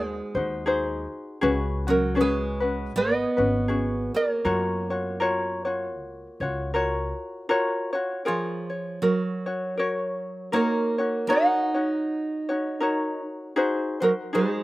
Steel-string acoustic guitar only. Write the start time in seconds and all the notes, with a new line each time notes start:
Already playing: G#3
1.88 F#3
2.21 G#3
2.96 B3
4.14 A#3
8.28 F3
9.02 F#3
10.53 A#3
11.27 D#4
14.02 F#3
14.35 G#3